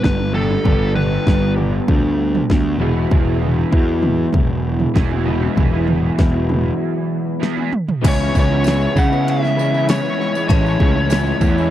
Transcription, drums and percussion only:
0.04 kick, snare, mid tom
0.19 mid tom
0.34 floor tom
0.50 mid tom
0.65 kick, floor tom
0.96 floor tom
1.27 kick, snare
1.58 floor tom
1.88 kick, floor tom
2.35 floor tom
2.50 kick, snare, mid tom
2.81 floor tom
3.11 kick, floor tom
3.42 floor tom
3.73 kick
4.02 floor tom, mid tom
4.33 kick, floor tom
4.79 floor tom
4.96 kick, snare, mid tom
5.11 mid tom
5.26 floor tom
5.41 mid tom
5.57 kick, floor tom
5.87 floor tom
6.19 kick, snare
6.49 floor tom, mid tom
7.43 snare
7.57 mid tom
7.72 mid tom
7.88 floor tom
8.04 kick, crash, ride bell, tambourine
8.19 tambourine
8.35 kick, tambourine
8.64 snare, ride bell, tambourine
8.80 tambourine
8.97 kick, tambourine
9.13 tambourine
9.28 ride bell, tambourine
9.44 snare, tambourine
9.59 tambourine
9.74 tambourine
9.89 snare, ride bell, tambourine
10.06 tambourine
10.21 snare, tambourine
10.35 tambourine
10.50 kick, ride bell, tambourine
10.66 tambourine
10.80 kick
11.10 snare, ride bell, tambourine
11.26 tambourine
11.41 kick, tambourine
11.58 tambourine

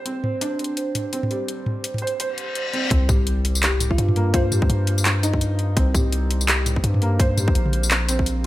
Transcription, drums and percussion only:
0.06 closed hi-hat
0.24 mid tom
0.41 closed hi-hat
0.59 closed hi-hat
0.64 closed hi-hat
0.77 closed hi-hat
0.95 closed hi-hat, mid tom
1.13 closed hi-hat
1.23 mid tom
1.31 closed hi-hat
1.48 closed hi-hat
1.66 mid tom
1.84 closed hi-hat
1.94 mid tom
1.98 closed hi-hat
2.07 closed hi-hat
2.20 closed hi-hat
2.38 closed hi-hat
2.55 closed hi-hat
2.73 closed hi-hat
2.91 kick, closed hi-hat
3.09 kick, mid tom, tambourine
3.27 closed hi-hat
3.45 closed hi-hat
3.55 tambourine
3.63 clap, closed hi-hat
3.80 closed hi-hat, mid tom, tambourine
3.91 kick
3.98 closed hi-hat
4.08 mid tom
4.16 closed hi-hat
4.34 kick, closed hi-hat
4.52 mid tom, tambourine
4.62 kick
4.70 closed hi-hat
4.87 closed hi-hat
4.98 tambourine
5.05 clap, closed hi-hat
5.23 closed hi-hat, tambourine
5.33 kick
5.41 closed hi-hat, tambourine
5.59 closed hi-hat
5.77 kick, closed hi-hat
5.95 kick, mid tom, tambourine
6.12 closed hi-hat
6.31 closed hi-hat
6.41 tambourine
6.48 clap, closed hi-hat
6.66 closed hi-hat, mid tom, tambourine
6.76 kick
6.84 closed hi-hat
6.94 mid tom
7.02 closed hi-hat
7.20 kick, closed hi-hat
7.37 mid tom, tambourine
7.48 kick
7.55 closed hi-hat
7.66 mid tom
7.73 closed hi-hat
7.83 tambourine
7.91 clap, closed hi-hat
8.09 closed hi-hat, tambourine
8.19 kick
8.26 closed hi-hat, tambourine

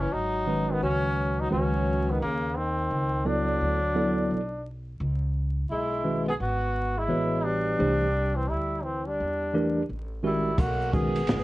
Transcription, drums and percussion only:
10.58 kick, ride, shaker
10.81 shaker
10.93 kick, high conga, shaker
11.16 ride, shaker
11.27 snare, hi-hat pedal, ride, high conga, low conga, shaker

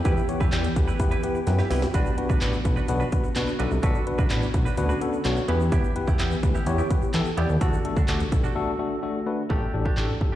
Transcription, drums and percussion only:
0.05 kick, closed hi-hat, shaker
0.17 shaker
0.29 closed hi-hat, shaker
0.40 kick, shaker
0.52 clap, closed hi-hat, shaker
0.64 closed hi-hat, shaker
0.76 kick, closed hi-hat, shaker
0.88 shaker
1.00 kick, closed hi-hat, shaker
1.12 closed hi-hat, shaker
1.23 closed hi-hat, shaker
1.35 shaker
1.47 snare, closed hi-hat, shaker
1.59 snare, shaker
1.70 snare, open hi-hat, shaker
1.82 snare, shaker
1.94 kick, closed hi-hat, shaker
2.06 shaker
2.18 closed hi-hat
2.29 kick, shaker
2.41 clap, closed hi-hat, shaker
2.53 shaker
2.65 kick, closed hi-hat, shaker
2.77 shaker
2.88 closed hi-hat, shaker
3.00 shaker
3.12 kick, closed hi-hat, shaker
3.24 shaker
3.36 clap, closed hi-hat, shaker
3.48 shaker
3.60 closed hi-hat
3.71 shaker
3.83 kick, closed hi-hat, shaker
3.95 shaker
4.07 closed hi-hat
4.18 kick, shaker
4.30 clap, closed hi-hat, shaker
4.42 shaker
4.54 kick, closed hi-hat, shaker
4.66 shaker
4.77 closed hi-hat, shaker
4.89 shaker
5.01 closed hi-hat, shaker
5.13 shaker
5.25 clap, closed hi-hat, shaker
5.37 shaker
5.48 closed hi-hat
5.60 shaker
5.72 kick, closed hi-hat, shaker
5.84 shaker
5.96 closed hi-hat
6.08 kick, shaker
6.19 clap, closed hi-hat, shaker
6.31 shaker
6.43 kick, closed hi-hat, shaker
6.55 shaker
6.66 closed hi-hat, shaker
6.78 shaker
6.90 kick, closed hi-hat, shaker
7.02 shaker
7.14 clap, closed hi-hat, shaker
7.25 shaker
7.38 closed hi-hat
7.49 shaker
7.61 kick, closed hi-hat, shaker
7.73 shaker
7.85 closed hi-hat
7.96 kick, shaker
8.08 clap, closed hi-hat, shaker
8.20 closed hi-hat, shaker
8.32 kick, closed hi-hat, shaker
8.44 shaker
9.50 kick
9.86 kick
9.97 clap
10.21 kick

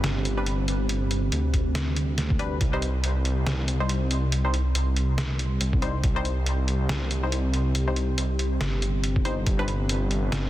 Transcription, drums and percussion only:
0.04 snare, closed hi-hat
0.25 closed hi-hat
0.46 closed hi-hat
0.68 closed hi-hat
0.89 closed hi-hat
1.11 closed hi-hat
1.32 closed hi-hat
1.54 kick, closed hi-hat
1.75 snare, closed hi-hat
1.96 closed hi-hat
2.18 snare, closed hi-hat
2.30 kick
2.39 closed hi-hat
2.61 kick, closed hi-hat
2.82 closed hi-hat
3.04 closed hi-hat
3.25 closed hi-hat
3.47 snare, closed hi-hat
3.68 closed hi-hat
3.89 closed hi-hat
4.11 closed hi-hat
4.32 closed hi-hat
4.54 closed hi-hat
4.75 closed hi-hat
4.96 closed hi-hat
5.18 snare, closed hi-hat
5.39 closed hi-hat
5.61 closed hi-hat
5.73 kick
5.82 closed hi-hat
6.04 kick, closed hi-hat
6.25 closed hi-hat
6.46 closed hi-hat
6.68 closed hi-hat
6.89 snare, closed hi-hat
7.11 closed hi-hat
7.32 closed hi-hat
7.54 closed hi-hat
7.75 closed hi-hat
7.96 closed hi-hat
8.18 closed hi-hat
8.39 closed hi-hat
8.61 snare, closed hi-hat
8.82 closed hi-hat
9.04 closed hi-hat
9.16 kick
9.25 closed hi-hat
9.46 kick, closed hi-hat
9.68 closed hi-hat
9.89 closed hi-hat
10.11 closed hi-hat
10.32 snare, closed hi-hat

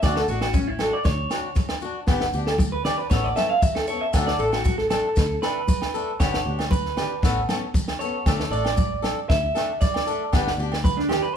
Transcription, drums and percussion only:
0.03 kick, snare, muted conga, low agogo, maracas
0.16 snare, maracas
0.28 maracas
0.41 snare, low agogo
0.54 kick, high conga, maracas
0.79 snare, high conga, low agogo, maracas
1.04 kick, snare, muted conga, maracas
1.30 snare, muted conga, low agogo, maracas
1.55 kick, snare, high conga, maracas
1.69 snare, low agogo
1.81 muted conga, maracas
2.07 kick, snare, muted conga, low agogo, maracas
2.21 snare
2.33 maracas
2.47 snare, low agogo
2.58 kick, high conga, maracas
2.85 snare, low conga, low agogo, maracas
2.99 maracas
3.11 kick, snare, muted conga, maracas
3.25 maracas
3.37 snare, muted conga, high conga, low agogo, maracas
3.62 kick, high conga, low conga, maracas
3.76 snare, low agogo
3.87 muted conga, maracas
4.13 kick, snare, muted conga, low agogo, maracas
4.28 snare
4.39 maracas
4.52 snare, low agogo, maracas
4.64 kick, high conga, maracas
4.78 snare
4.90 snare, high conga, low agogo, maracas
5.16 kick, snare, muted conga, maracas
5.43 snare, muted conga, low agogo, maracas
5.68 kick, high conga, maracas
5.82 snare, low agogo
5.95 muted conga, maracas
6.20 kick, snare, muted conga, low agogo, maracas
6.34 snare, maracas
6.59 snare, low agogo, maracas
6.71 kick, high conga, maracas
6.85 snare
6.97 snare, low conga, low agogo, maracas
7.23 kick, snare, muted conga, maracas
7.49 snare, muted conga, high conga, low agogo, maracas
7.74 kick, high conga, low conga, maracas
7.88 snare, low agogo
8.01 muted conga, maracas
8.26 kick, snare, muted conga, low agogo, maracas
8.40 snare, maracas
8.52 maracas
8.65 snare, low agogo
8.77 kick, high conga, maracas
9.04 snare, high conga, low agogo, maracas
9.30 kick, snare, muted conga, maracas
9.56 snare, low agogo, maracas
9.81 kick, snare, high conga, maracas
9.94 snare, low agogo
10.06 muted conga, maracas
10.33 kick, snare, muted conga, low agogo, maracas
10.47 snare
10.59 maracas
10.72 snare, low agogo
10.84 kick, high conga, maracas
10.99 snare
11.09 snare, low conga, low agogo, maracas
11.24 maracas

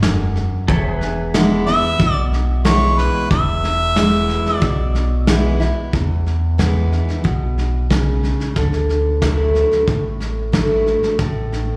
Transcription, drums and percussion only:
0.03 snare, hi-hat pedal
0.36 snare
0.68 kick, snare
1.01 snare
1.34 snare, hi-hat pedal
1.67 snare
2.00 kick, snare
2.33 snare
2.65 snare, hi-hat pedal
2.98 snare
3.31 kick, snare
3.64 snare
3.96 snare, hi-hat pedal
4.29 snare
4.46 snare
4.62 kick, snare
4.95 snare
5.27 snare, hi-hat pedal
5.61 snare
5.93 kick, snare
6.26 snare
6.59 kick, snare, hi-hat pedal
6.92 snare
7.09 snare
7.25 kick, snare
7.58 snare
7.91 kick, snare, hi-hat pedal
8.23 snare
8.40 snare
8.56 kick, snare
8.73 snare
8.89 snare
9.22 kick, snare, hi-hat pedal
9.55 snare
9.71 snare
9.87 kick, snare
10.20 snare
10.53 kick, snare, hi-hat pedal
10.86 snare
11.03 snare
11.19 kick, snare
11.52 snare

